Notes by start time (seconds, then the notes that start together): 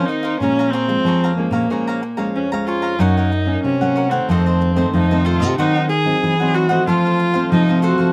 Already playing: D#3 A#3 C4
0.06 D#4 A#4 C5
0.10 F5
0.23 A#4 C5 F5
0.40 A#2 F3 G#3 C#4 G#4 C#5 F5 A#5
0.59 C#5 F5 A#5
0.70 C4 G#4 C#5 F5
0.74 A#5
0.88 F3 G#3, muted cavaquinho stroke
1.05 F2 F3 G#4 C#5 F5 A#5
1.24 C#5 F5 A#5
1.36 F3 G#3 A#3 C#4
1.51 A#2 C#5 F5 A#5
1.70 A#2 F3 G#3 C#4 G#4 C#5 F5 A#5
1.87 C#5 F5 A#5
2.02 muted cavaquinho stroke
2.17 F3 G#3 C#4 C#5 F5 A#5
2.35 F2 C#4
2.52 F3 G#3 C#4 C#5 F5 A#5
2.66 F4 G#4 C#5 F5 A#5
2.82 C#5 F5 A#5
2.99 F#2 F#3 A#3 C#4 D#4 F#4 A#4 C#5 F#5
3.17 A#4 C#5 F#5
3.32 muted cavaquinho stroke
3.46 F#3 A#3 C#4
3.64 C3 C#4
3.81 F#3 A#3 C#4 A#4 C#5 F#5
3.96 F#4 A#4 C#5 F#5
4.10 D#3 A3 C4 A#4 C#5 F#5
4.29 F2 F4 A4 C5 D#5
4.46 A4 C5 D#5
4.61 muted cavaquinho stroke
4.75 D#3 A3 C4 A4 C5 D#5
4.93 F2 C3 D#4
5.11 D#3 A3 C4 A4 C5 D#5
5.25 F4 A4 C5 D#5
5.40 C3 A4 C5 D#5
5.58 D#3 F#3 C4 D#4 F#4 C5 D#5 F#5
5.75 C5 D#5 F#5
5.89 G#4, muted cavaquinho stroke
6.05 F#3 C4 D#4
6.23 E3
6.40 F#3 C4 D#4 C5 D#5 F#5
6.54 F#4 C5 D#5 F#5
6.69 F3 A3 C4 C5 D#5 F#5
6.87 F2 F3 F4 A4 C5 F5
7.05 A4 C5 F5
7.19 muted cavaquinho stroke
7.34 F3 A3 C4 A4 C5 F5
7.52 C3 F3 D#4
7.69 F3 A3 C4 A4 C5 F5
7.82 F4 F#4 A4 C5 F5
7.98 F3 A4 C5 F5